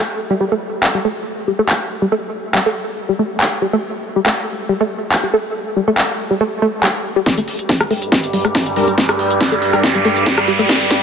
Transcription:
0.30 synth arpeggio sound G3
0.41 synth arpeggio sound G3
0.52 synth arpeggio sound A3
0.83 clap
0.95 synth arpeggio sound G3
1.05 synth arpeggio sound A3
1.48 synth arpeggio sound G3
1.59 synth arpeggio sound A3
1.69 clap
2.02 synth arpeggio sound G3
2.12 synth arpeggio sound A3
2.55 synth arpeggio sound G3, clap
2.66 synth arpeggio sound A3
3.09 synth arpeggio sound G3
3.19 synth arpeggio sound A3
3.41 clap
3.62 synth arpeggio sound G3
3.73 synth arpeggio sound A3
4.16 synth arpeggio sound G3
4.26 synth arpeggio sound A3, clap
4.69 synth arpeggio sound G3
4.81 synth arpeggio sound A3
5.12 clap
5.23 synth arpeggio sound G3
5.34 synth arpeggio sound A3
5.76 synth arpeggio sound G3
5.88 synth arpeggio sound A3
5.98 clap
6.31 synth arpeggio sound G3
6.41 synth arpeggio sound A3
6.62 synth arpeggio sound A3
6.83 synth arpeggio sound G3, clap
7.16 synth arpeggio sound G3
7.26 synth drone G2 G3, synth arpeggio sound G3, kick, snare, closed hi-hat, riser
7.38 synth arpeggio sound A3, closed hi-hat
7.48 open hi-hat
7.59 closed hi-hat
7.69 kick, snare, closed hi-hat
7.81 synth arpeggio sound G3, cross-stick, closed hi-hat
7.91 synth arpeggio sound A3, open hi-hat
8.02 closed hi-hat
8.12 kick, snare, closed hi-hat
8.23 closed hi-hat
8.33 synth arpeggio sound G3, open hi-hat
8.45 synth arpeggio sound A3, cross-stick, closed hi-hat
8.55 kick, snare, closed hi-hat
8.66 closed hi-hat
8.76 synth stab G3 D4 A#4, open hi-hat
8.88 synth arpeggio sound G3, closed hi-hat
8.98 synth arpeggio sound A3, kick, snare, closed hi-hat
9.09 cross-stick, closed hi-hat
9.19 open hi-hat
9.30 closed hi-hat
9.41 synth arpeggio sound G3, kick, snare, closed hi-hat
9.52 synth arpeggio sound A3, closed hi-hat
9.62 open hi-hat
9.73 synth stab G3 D4 A#4, cross-stick, closed hi-hat
9.83 kick, snare, closed hi-hat
9.95 synth arpeggio sound G3, closed hi-hat
10.05 synth arpeggio sound A3, open hi-hat
10.16 closed hi-hat
10.26 kick, snare, closed hi-hat
10.38 cross-stick, closed hi-hat
10.48 synth arpeggio sound G3, open hi-hat
10.59 synth arpeggio sound A3, closed hi-hat
10.69 kick, snare, closed hi-hat
10.80 closed hi-hat
10.91 snare, open hi-hat

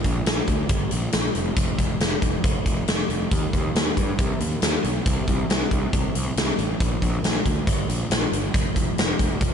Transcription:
0.04 picked electric bass A#1, kick, closed hi-hat
0.26 picked electric bass A#1, snare, closed hi-hat
0.48 picked electric bass D2, kick, closed hi-hat
0.69 picked electric bass G1, kick, closed hi-hat
0.91 picked electric bass A#1, closed hi-hat
1.12 picked electric bass A#1, snare, closed hi-hat
1.35 picked electric bass F1, closed hi-hat
1.56 picked electric bass F1, kick, closed hi-hat
1.78 picked electric bass F1, kick, closed hi-hat
2.00 picked electric bass F1, snare, closed hi-hat
2.22 picked electric bass F1, kick, closed hi-hat
2.44 picked electric bass F1, kick, closed hi-hat
2.66 picked electric bass F1, kick, closed hi-hat
2.87 picked electric bass F1, snare, closed hi-hat
3.09 picked electric bass F1, closed hi-hat
3.32 picked electric bass D#2, kick, closed hi-hat
3.53 picked electric bass D#2, kick, closed hi-hat
3.75 picked electric bass D#2, snare, closed hi-hat
3.97 picked electric bass G2, kick, closed hi-hat
4.19 picked electric bass C2, kick, closed hi-hat
4.40 picked electric bass D#2, closed hi-hat
4.62 picked electric bass D#2, snare, closed hi-hat
4.84 picked electric bass B1, closed hi-hat
5.06 picked electric bass C2, kick, closed hi-hat
5.28 picked electric bass C2, kick, closed hi-hat
5.49 picked electric bass C2, snare, closed hi-hat
5.71 picked electric bass C2, kick, closed hi-hat
5.93 picked electric bass C2, kick, closed hi-hat
6.15 picked electric bass C2, closed hi-hat
6.36 picked electric bass C2, snare, closed hi-hat
6.58 picked electric bass A1, closed hi-hat
6.80 picked electric bass A#1, kick, closed hi-hat
7.02 picked electric bass A#1, kick, closed hi-hat
7.23 picked electric bass A#1, snare, closed hi-hat
7.46 picked electric bass D2, kick, closed hi-hat
7.67 picked electric bass G1, kick, closed hi-hat
7.88 picked electric bass A#1, closed hi-hat
8.10 picked electric bass A#1, snare, closed hi-hat
8.32 picked electric bass G1, closed hi-hat
8.54 picked electric bass F1, kick, closed hi-hat
8.76 picked electric bass F1, kick, closed hi-hat
8.98 picked electric bass F1, snare, closed hi-hat
9.19 picked electric bass F1, kick, closed hi-hat
9.41 picked electric bass F1, kick, closed hi-hat

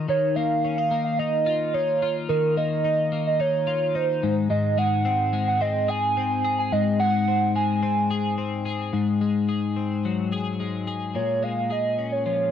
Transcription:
Already playing: clean electric guitar F4
0.09 clean electric guitar D#3, soft synth lead C#5
0.36 clean electric guitar A#3, soft synth lead F5
0.65 clean electric guitar C#4
0.78 clean electric guitar D#4
0.91 clean electric guitar A#3
1.04 soft synth lead F5
1.19 clean electric guitar D#4, soft synth lead D#5
1.46 clean electric guitar F4
1.74 clean electric guitar D#4, soft synth lead C#5
2.02 clean electric guitar F4
2.29 clean electric guitar D#3, soft synth lead A#4
2.57 clean electric guitar A#3, soft synth lead D#5
2.84 clean electric guitar D#4
3.12 clean electric guitar A#3
3.27 soft synth lead D#5
3.40 clean electric guitar D#4, soft synth lead C#5
3.67 clean electric guitar F4
3.95 clean electric guitar D#4, soft synth lead C5
4.23 clean electric guitar G#2
4.50 clean electric guitar G#2, soft synth lead D#5
4.78 clean electric guitar G#3, soft synth lead F#5
5.05 clean electric guitar C4
5.33 clean electric guitar G#3
5.48 soft synth lead F#5
5.61 clean electric guitar C4, soft synth lead D#5
5.88 clean electric guitar G#4, soft synth lead G#5
6.17 clean electric guitar C4
6.45 clean electric guitar G#4
6.59 soft synth lead G#5
6.72 clean electric guitar G#2, soft synth lead D#5
7.00 clean electric guitar G#3, soft synth lead F#5
7.28 clean electric guitar C4
7.56 clean electric guitar G#3, soft synth lead G#5
7.83 clean electric guitar C4
8.11 clean electric guitar G#4
8.38 clean electric guitar C4
8.66 clean electric guitar G#4
8.93 clean electric guitar G#2
9.21 clean electric guitar G#3
9.49 clean electric guitar G#4
9.77 clean electric guitar C4
10.05 clean electric guitar F#3
10.32 clean electric guitar G#4
10.60 clean electric guitar G#3
10.87 clean electric guitar G#4
11.15 clean electric guitar A#2, soft synth lead C#5
11.42 clean electric guitar G#3, soft synth lead F5
11.70 clean electric guitar G#4, soft synth lead D#5
11.98 clean electric guitar C#4
12.12 soft synth lead C#5
12.26 clean electric guitar F3, soft synth lead C#5

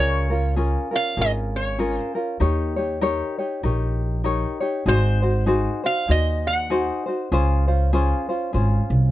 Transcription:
Already playing: upright bass C#2, ukulele C#4 F4 G#4 A#4, resonator guitar played with a steel bar C#5
0.30 ukulele C#4 F4 A#4
0.56 ukulele C#4 F4 G#4 A#4
0.91 ukulele C#4 F4 A#4
0.96 resonator guitar played with a steel bar F5
1.17 upright bass G#1, ukulele C#4 F4 G#4 A#4
1.21 resonator guitar played with a steel bar D#5
1.56 resonator guitar played with a steel bar C#5
1.79 ukulele C#4 F4 G#4 A#4
1.96 resonator guitar played with a steel bar C5
2.15 ukulele C#4 F4 A#4
2.40 upright bass D#2, ukulele D#4 G4 A#4 C#5
2.76 ukulele D#4 G4 C#5
3.01 ukulele D#4 G4 A#4 C#5
3.38 ukulele D#4 G4 C#5
3.63 upright bass A#1, ukulele D#4 G4 A#4 C#5
4.24 ukulele D#4 G4 A#4 C#5
4.60 ukulele D#4 G4 C#5
4.86 upright bass G#1, ukulele D#4 F#4 G#4 C5, resonator guitar played with a steel bar C5
5.22 ukulele D#4 F#4 C5
5.46 ukulele D#4 F#4 G#4 C5
5.84 ukulele D#4 F#4 C5, resonator guitar played with a steel bar F5
6.08 upright bass D#2, ukulele D#4 F#4 G#4 C5, resonator guitar played with a steel bar D#5
6.47 resonator guitar played with a steel bar F#5
6.70 ukulele D#4 F#4 G#4 C5
7.06 ukulele D#4 F#4 C5
7.32 upright bass C#2, ukulele C#4 F4 G#4 C5
7.68 ukulele C#4 F4 C5
7.93 ukulele C#4 F4 G#4 C5
8.29 ukulele C#4 F4 C5
8.53 upright bass G#1, ukulele C#4 F4 G#4 C5
8.90 upright bass C2

